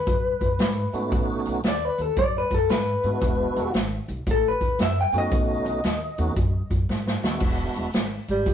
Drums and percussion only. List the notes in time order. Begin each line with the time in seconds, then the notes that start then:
0.07 kick, closed hi-hat
0.41 kick, closed hi-hat
0.59 snare, closed hi-hat
0.94 closed hi-hat
1.12 kick, closed hi-hat
1.45 closed hi-hat
1.63 snare, closed hi-hat
1.98 closed hi-hat
2.16 kick, closed hi-hat
2.51 kick, closed hi-hat
2.69 snare, closed hi-hat
3.03 closed hi-hat
3.21 kick, closed hi-hat
3.56 closed hi-hat
3.74 snare, closed hi-hat
4.08 closed hi-hat
4.27 kick, closed hi-hat
4.61 kick, closed hi-hat
4.79 snare, closed hi-hat
5.14 closed hi-hat
5.31 kick, closed hi-hat
5.66 closed hi-hat
5.83 snare, closed hi-hat
6.18 closed hi-hat
6.36 kick, closed hi-hat
6.71 kick, closed hi-hat
6.90 snare
7.07 snare
7.24 snare
7.40 kick, crash
7.75 closed hi-hat
7.93 snare, closed hi-hat
8.28 closed hi-hat
8.46 kick, closed hi-hat